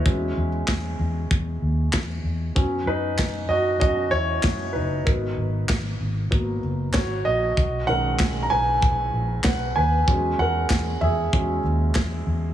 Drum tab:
CP |--x---x-|--x---x-|--x---x-|--x---x-|
SD |--o---o-|--o---o-|--o---o-|--o---o-|
FT |--------|--------|--------|--------|
BD |o-o-o-o-|o-o-o-o-|o-o-o-o-|o-o-o-o-|

CP |--x---x-|
SD |--o---o-|
FT |---o----|
BD |o-o-o-o-|